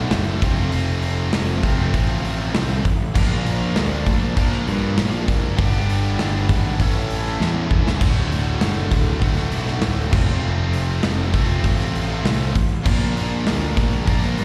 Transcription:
Already playing: B1 D2 A2 D3 A3 F#4
0.11 F#1, snare, open hi-hat
0.42 F1 F2 C3 F3 A3 C4 F4, kick, open hi-hat
0.72 F1, open hi-hat
1.02 open hi-hat
1.33 F1, snare, open hi-hat
1.63 F1 F2 C3 F3 A3 C4 F4, kick, open hi-hat
1.94 A1, kick, open hi-hat
2.24 open hi-hat
2.54 C2, snare, open hi-hat
2.85 A1, kick, open hi-hat
3.14 A#1 A#2 F3 A#3 D4 F4 A#4, kick, crash
3.45 A#1, open hi-hat
3.76 D2, snare, open hi-hat
4.06 A#1, kick, open hi-hat
4.35 A#1 A#2 F3 A#3 D4 F4, kick, open hi-hat
4.39 A#4
4.52 snare
4.67 G2, open hi-hat
4.98 A#1, snare, open hi-hat
5.28 F#1, kick, open hi-hat
5.56 G1 G2 D3 G3 B3 D4, kick, open hi-hat
5.60 G4
5.89 open hi-hat
6.19 G1, snare, open hi-hat
6.49 G#1, kick, open hi-hat
6.79 A1 A2 E3 A3 C#4 E4 A4, kick, open hi-hat
7.10 open hi-hat
7.27 snare
7.40 E2, snare
7.71 E1, kick
7.87 snare
7.99 D1 D2 A2 D3 A3, kick, crash, splash
8.04 F#4
8.31 D1, open hi-hat
8.61 F#1, snare, open hi-hat
8.91 D1, kick, open hi-hat
9.20 D1 D2 A2 D3 A3, kick, open hi-hat
9.25 F#4
9.37 snare
9.52 B1, open hi-hat
9.67 snare
9.82 D1, snare, open hi-hat
10.11 F1 F2 C3 F3 A3 C4, kick, crash
10.15 F4
10.42 F1
10.73 open hi-hat
11.03 F1, snare, open hi-hat
11.33 F1 F2 C3 F3 A3 C4 F4, kick, open hi-hat
11.64 A1, kick, open hi-hat
11.80 snare
11.95 open hi-hat
12.24 C2, snare, open hi-hat
12.55 A1, kick, open hi-hat
12.83 A#1 A#2 F3 A#3 D4 F4, kick, crash
12.87 A#4
13.16 A#1, open hi-hat
13.47 D2, snare, open hi-hat
13.77 A#1, kick, open hi-hat
14.06 A#1 A#2 F3 A#3 D4 F4, kick, open hi-hat
14.10 A#4
14.23 snare
14.37 G2, open hi-hat

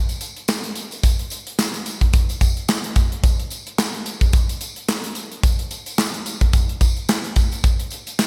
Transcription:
0.09 closed hi-hat, tambourine
0.21 closed hi-hat, tambourine
0.36 closed hi-hat
0.48 snare, clap, tambourine
0.64 closed hi-hat
0.76 closed hi-hat, tambourine
0.91 closed hi-hat, tambourine
1.03 kick, closed hi-hat, tambourine
1.19 closed hi-hat
1.30 closed hi-hat, tambourine
1.47 closed hi-hat
1.59 snare, clap, tambourine
1.74 closed hi-hat
1.86 closed hi-hat, tambourine
2.01 kick, closed hi-hat
2.13 kick, closed hi-hat, tambourine
2.29 closed hi-hat, tambourine
2.41 kick, closed hi-hat, tambourine
2.57 closed hi-hat
2.68 snare, clap, tambourine
2.84 closed hi-hat
2.96 kick, closed hi-hat, tambourine
3.12 closed hi-hat
3.24 kick, closed hi-hat, tambourine
3.40 closed hi-hat
3.50 closed hi-hat, tambourine
3.67 closed hi-hat
3.79 snare, clap, tambourine
3.94 closed hi-hat
4.06 closed hi-hat, tambourine
4.21 kick, closed hi-hat, tambourine
4.33 kick, closed hi-hat, tambourine
4.49 closed hi-hat, tambourine
4.61 closed hi-hat, tambourine
4.76 closed hi-hat
4.88 snare, clap, tambourine
5.04 closed hi-hat
5.15 closed hi-hat, tambourine
5.32 closed hi-hat
5.43 kick, closed hi-hat, tambourine
5.59 closed hi-hat
5.71 closed hi-hat, tambourine
5.86 closed hi-hat, tambourine
5.98 snare, clap, tambourine
6.14 closed hi-hat
6.26 closed hi-hat, tambourine
6.41 kick, closed hi-hat
6.53 kick, closed hi-hat, tambourine
6.69 closed hi-hat
6.81 kick, closed hi-hat, tambourine
6.97 closed hi-hat
7.09 snare, clap, tambourine
7.24 closed hi-hat
7.36 kick, closed hi-hat, tambourine
7.52 closed hi-hat, tambourine
7.64 kick, closed hi-hat, tambourine
7.80 closed hi-hat
7.90 closed hi-hat, tambourine
8.07 closed hi-hat, tambourine
8.19 snare, clap, tambourine

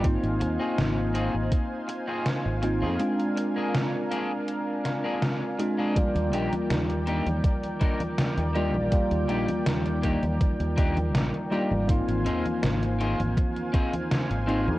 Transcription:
Already playing: G#1
0.03 A#3 C4 D#4 F4 C5 F5 G#5, kick, closed hi-hat
0.23 G#1, closed hi-hat
0.40 D#2, muted clean electric guitar stroke, closed hi-hat
0.59 C4 F4 G#4
0.78 G#1, snare, closed hi-hat
1.14 C4 F4 G#4, closed hi-hat
1.34 G#1
1.52 kick, closed hi-hat
1.88 muted clean electric guitar stroke, closed hi-hat
2.08 C4 F4 G#4
2.26 snare, closed hi-hat
2.46 G#1
2.62 A#3 C4 D#4 F4, muted clean electric guitar stroke, closed hi-hat
2.82 F2 C4 F4 G#4
2.99 G#3 C4 D4 F4 A#4, closed hi-hat
3.20 closed hi-hat
3.36 muted clean electric guitar stroke, closed hi-hat
3.56 A#3 D4 G#4
3.74 snare, closed hi-hat
4.11 A#3 D4 G#4, closed hi-hat
4.48 closed hi-hat
4.85 muted clean electric guitar stroke, snare, closed hi-hat
5.04 A#3 D4 G#4
5.22 snare, closed hi-hat
5.59 G#3 C4 D4 F4, muted clean electric guitar stroke, closed hi-hat
5.78 A#3 D4 G#4
5.95 D#3 G3 A#3 F4 A#4 D5 G5, muted fingered electric bass stroke, kick, closed hi-hat, high conga
6.16 D#2, closed hi-hat, high conga
6.33 A#1 A#3 D4 D#4 G4, closed hi-hat
6.53 closed hi-hat, high conga
6.70 D#2, snare, closed hi-hat, high conga
6.90 closed hi-hat, high conga
7.07 A#3 D4 D#4 G4, closed hi-hat
7.26 D#2, closed hi-hat, high conga
7.44 kick, closed hi-hat, high conga
7.64 closed hi-hat, high conga
7.81 A#3 D4 D#4 A#4, kick, closed hi-hat
8.00 closed hi-hat, high conga
8.18 snare, closed hi-hat, high conga
8.37 D#2, closed hi-hat, high conga
8.55 G3 A#3 D4 D#4 F4 G4 D5, closed hi-hat
8.74 A#1, high conga
8.91 G3 A#3 F4 D5, muted fingered electric bass stroke, kick, closed hi-hat, high conga
9.11 D#2, closed hi-hat, high conga
9.29 A#1 A#3 D4 D#4 G4, closed hi-hat
9.48 closed hi-hat, high conga
9.66 D#2, snare, closed hi-hat, high conga
9.86 closed hi-hat, high conga
10.03 A#3 D4 D#4 G4, kick, closed hi-hat
10.23 D#2, closed hi-hat, high conga
10.41 kick, closed hi-hat, high conga
10.60 D#2, closed hi-hat, high conga
10.77 A#3 D4 D#4 G4, kick, closed hi-hat
10.97 closed hi-hat, high conga
11.14 A#1, snare, closed hi-hat, high conga
11.34 closed hi-hat, high conga
11.51 G3 A#3 D4 D#4 F4 G4 D5, closed hi-hat
11.71 G#1, high conga
11.87 A#3 C4 D#4 F4 C5 F5 G#5, kick, closed hi-hat, high conga
12.08 G#1, closed hi-hat, high conga
12.25 D#2 C4 D#4 F4 G#4, closed hi-hat
12.45 closed hi-hat, high conga
12.63 G#1, snare, closed hi-hat, high conga
12.83 closed hi-hat, high conga
13.00 C4 D#4 F4 G#4, closed hi-hat
13.19 G#1, closed hi-hat, high conga
13.37 kick, closed hi-hat, high conga
13.56 closed hi-hat, high conga
13.73 C4 D#4 F4 G#4, kick, closed hi-hat
13.94 closed hi-hat, high conga
14.12 snare, closed hi-hat, high conga
14.31 G#1, closed hi-hat, high conga
14.47 A#3 C4 D#4 F4 G#4, closed hi-hat
14.68 F2, high conga

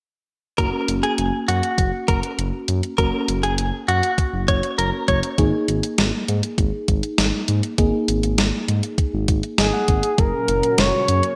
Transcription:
0.58 F#1 A#3 C#4 F#4 A#4, kick, closed hi-hat
0.88 F#1, closed hi-hat
1.03 G#4, closed hi-hat
1.18 F#1, closed hi-hat
1.48 F#2 F#4, closed hi-hat
1.63 closed hi-hat
1.78 F#1, kick, closed hi-hat
2.08 F#1 A#4, kick, closed hi-hat
2.23 closed hi-hat
2.38 F#1, closed hi-hat
2.68 F#2, closed hi-hat
2.83 closed hi-hat
2.98 F#1 A#3 C#4 F#4 A#4, kick, closed hi-hat
3.28 F#1, closed hi-hat
3.43 F#1 G#4, closed hi-hat
3.58 F#1, closed hi-hat
3.88 F#2 F#4, closed hi-hat
4.03 closed hi-hat
4.18 kick, closed hi-hat
4.33 F#1
4.48 F#1 C#5, kick, closed hi-hat
4.63 closed hi-hat
4.78 F#1 A#4, closed hi-hat
5.08 F#1 C#5, kick, closed hi-hat
5.23 closed hi-hat
5.38 G#1 A#3 D#4 G#4, kick, closed hi-hat
5.68 G#1, closed hi-hat
5.83 closed hi-hat
5.98 G#1, snare, closed hi-hat
6.28 G#2, closed hi-hat
6.43 closed hi-hat
6.58 G#1, kick, closed hi-hat
6.88 G#1, kick, closed hi-hat
7.03 closed hi-hat
7.18 G#1, snare, closed hi-hat
7.48 G#2, closed hi-hat
7.63 closed hi-hat
7.78 G#1 A#3 D#4 G#4, kick, closed hi-hat
8.08 G#1, closed hi-hat
8.23 G#1, closed hi-hat
8.38 G#1, snare, closed hi-hat
8.68 G#2, closed hi-hat
8.83 closed hi-hat
8.98 kick, closed hi-hat
9.13 G#1
9.28 G#1, kick, closed hi-hat
9.43 closed hi-hat
9.58 G#1 G#4 D#5, snare, closed hi-hat
9.73 F#5
9.88 G#1, kick, closed hi-hat
10.03 closed hi-hat
10.18 F#1 A#2 C#3 F#3 C#4 F#4 A#4, kick, closed hi-hat
10.48 F#1, closed hi-hat
10.63 closed hi-hat
10.78 F#1 C#5, snare, closed hi-hat
11.08 F#2, closed hi-hat
11.23 closed hi-hat

